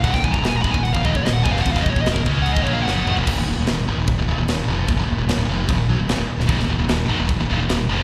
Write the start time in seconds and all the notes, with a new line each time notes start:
0.04 D#1 D#2 A#2 F#5, kick, crash
0.14 D#1 D#2 A#2 G5, kick, snare
0.24 D#1 D#2 A#2 G#5, kick
0.31 D#1 D#2 A#2 A#5, kick
0.42 D#1 D#2 A#2 A#5, snare, crash
0.48 G#5
0.56 A#5
0.62 G#1 G#2 B5, kick
0.66 D#3
0.72 D#1 D#2 G#5, kick
0.76 A#2
0.83 F#5, crash
0.93 D#1 D#2 A#2 F5, kick
1.05 D#1 D#2 A#2 D#5, kick
1.15 D#1 D#2 A#2 C#5, kick
1.24 D#1 D#2 A#2 D#5, snare, crash
1.33 F#5
1.43 F1 F2 G#5, kick
1.47 C3 F3
1.52 F5
1.57 snare
1.62 F#5
1.66 D#1 D#2 A#2, kick, crash
1.72 F#1 F5, kick
1.77 F#2 C#3, snare
1.81 D#5
1.86 D#1 D#2 A#2 C#5, kick
1.96 D#1 D#2 A#2, kick
2.01 D#5
2.06 D#1 D#2 A#2, snare, crash
2.12 A#4
2.16 D#1 D#2 A#2, kick
2.25 C#2 C#3 G#3 C#4, kick
2.43 F#5, crash
2.52 D#5
2.57 D#1 D#2 A#2, kick
2.63 C#5
2.67 A#1 A#2 F3 A#3, kick
2.73 F5
2.82 F#5
2.86 F#1 F#2 C#3 F#3, snare
3.06 G#1 G#2 D#3, mid tom
3.16 D#1 D#2 A#2, floor tom
3.27 D#1 D#2 A#2, kick, crash
3.37 D#1 D#2 A#2
3.47 D#1 D#2 A#2
3.57 D#1 D#2 A#2
3.67 D#1 D#2 A#2, snare, crash
3.88 G#1 G#2 D#3
3.97 D#1 D#2 A#2
4.07 kick, crash
4.18 D#1 D#2 A#2
4.28 D#1 D#2 A#2
4.37 D#1 D#2 A#2
4.48 D#1 D#2 A#2, snare, crash
4.67 F1 F2 C3 F3
4.88 D#1 D#2 A#2, kick, crash
4.96 F#1 F#2 C#3
5.08 D#1 D#2 A#2
5.17 D#1 D#2 A#2
5.27 D#1 D#2 A#2, snare, crash
5.37 D#1 D#2 A#2
5.48 F1 F2 C3 F3
5.69 D#1 D#2 A#2, kick, crash
5.89 B1 B2 F#3
5.98 D#1 D#2 A#2
6.08 D#1 D#2 A#2, snare, crash
6.17 D#1 D#2 A#2
6.27 muted fingered electric bass stroke, muted distorted electric guitar stroke
6.37 D#1 D#2 A#2, snare
6.49 D#1 D#2 A#2, kick, crash
6.58 D#1 D#2 A#2, snare
6.69 D#1 D#2 A#2
6.78 D#1 D#2 A#2
6.88 D#1 D#2 A#2, snare, crash
7.09 G#1 G#2 D#3
7.18 D#1 D#2 A#2
7.29 kick, crash
7.39 D#1 D#2 A#2
7.49 D#1 D#2 A#2
7.59 D#1 D#2 A#2
7.68 D#1 D#2 A#2, snare, crash
7.88 F1 F2 C3 F3